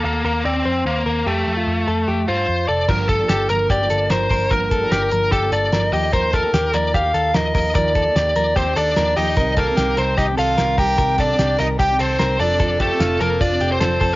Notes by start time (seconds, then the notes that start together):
Already playing: A4
0.04 D#2 A#3
0.24 D#2 A#3 A#4
0.45 D#2 C4 D5
0.65 F2 C5
0.85 D#2 A#3
1.06 D#2 A#4
1.26 F2 A3 G4
1.47 F2
1.57 F4
1.67 F2
1.87 F2 A4
2.08 F2 G4
2.28 G2 F4 C5
2.49 F2
2.68 F1 A4 D5
2.88 G1 G2 D3 F3 A#3 D4 G4 A#4, kick, crash
3.09 A4, kick, closed hi-hat
3.19 F3 A#3 D4 G4
3.29 G1 G4 A4, snare, closed hi-hat
3.49 G1 F3 A#3 D4 G4 A#4, closed hi-hat
3.70 G1 G4 D5, kick, closed hi-hat
3.80 F3 A#3 D4 G4
3.90 G1 A4, closed hi-hat
4.10 G1 F3 A#3 D4 G4 A#4 C5, snare, closed hi-hat
4.30 G1 F3 A#3 D4 G4 A#4, kick, open hi-hat
4.51 G1 G2 D3 F3 A#3 D4 G4 A#4, kick, closed hi-hat
4.71 A4, kick, closed hi-hat
4.81 F3 A#3 D4 G4
4.92 G1 G4 A#4, snare, closed hi-hat
5.11 G1 F3 A#3 D4 G4 A#4, closed hi-hat
5.32 G1 G4 A4, kick, closed hi-hat
5.41 F3 A#3 D4 G4
5.52 G1 A4 D5, closed hi-hat
5.72 G1 F3 A#3 D4 G4 A#4, snare, closed hi-hat
5.92 D#2 F3 A#3 D#4 G4 D#5, open hi-hat
6.12 D#3 F3 A#3 D#4 G4 A#4 C5, kick, closed hi-hat
6.33 A4 A#4, kick, closed hi-hat
6.43 A#3 D#4 G4
6.53 D#2 G4, snare, closed hi-hat
6.73 D#2 F3 A#3 D#4 G4 A#4 D5, closed hi-hat
6.94 D#2 G4 F5, kick, closed hi-hat
7.03 A#3 D#4 G4
7.14 D#2 A4, closed hi-hat
7.34 D#2 F3 A#3 D#4 G4 A#4 D#5, snare, closed hi-hat
7.55 D#2 F3 A#3 D#4 G4 A#4, kick, open hi-hat
7.75 D#2 D#3 F3 A#3 D#4 G4 A#4 D5, kick, closed hi-hat
7.95 A4, kick, closed hi-hat
8.05 A#3 D#4 G4
8.16 D#2 G4 D5, snare, closed hi-hat
8.35 D#2 F3 A#3 D#4 G4 A#4, closed hi-hat
8.56 D#2 C4 G4 C5, kick, closed hi-hat
8.66 A#3 D#4 G4
8.76 D#2 D4 A4 D5, closed hi-hat
8.96 D#2 F3 A#3 D#4 G4 A#4, snare, closed hi-hat
9.16 D#2 F3 A#3 D#4 G4 D#5, open hi-hat
9.37 C2 C3 D#3 G3 C4 D#4 G4 A#4, kick, closed hi-hat
9.57 A#3 A4 A#4, kick, closed hi-hat
9.67 C4 D#4 G4
9.77 C2 G4, snare, closed hi-hat
9.97 C2 G3 C4 D#4 G4 A#4 C5, closed hi-hat
10.17 C2 D#4 G4 D#5, kick, snare, closed hi-hat
10.28 C4 D#4 G4
10.37 C2 F4 A4 F5, closed hi-hat
10.58 C2 G3 C4 D#4 G4 A#4, snare, closed hi-hat
10.78 C2 G3 C4 D#4 G4 A#4 G5, kick, open hi-hat
10.98 C2 C3 G3 C4 D#4 G4 A#4, kick, closed hi-hat
11.18 D4 A4 D5, kick, closed hi-hat
11.28 C4 G4
11.39 C2 G4, snare, closed hi-hat
11.59 C2 G3 C4 D#4 G4 A#4 D#5, closed hi-hat
11.79 C2 G4 G5, kick, snare, closed hi-hat
11.89 C4 D#4 G4
11.99 C2 C4 A4 C5, closed hi-hat
12.19 C2 G3 C4 D#4 G4 A#4, snare, closed hi-hat
12.39 F1 F3 C4 D4 F4 A4 D5, open hi-hat
12.60 F3 C4 F4 A4, kick, closed hi-hat
12.80 A3 G4 A4, kick, closed hi-hat
12.90 C4 F4 A4
13.00 F1 F4, snare, closed hi-hat
13.20 F1 F3 A#3 C4 F4 A4 A#4, closed hi-hat
13.41 F1 D4 F4 D5, kick, closed hi-hat
13.50 C4 F4 A4
13.60 F1 G4, closed hi-hat
13.72 C4 C5
13.80 F1 F3 C4 F4 A4 C5, snare, closed hi-hat
14.00 F1 F3 C4 F4 A4, kick, open hi-hat
14.12 A#3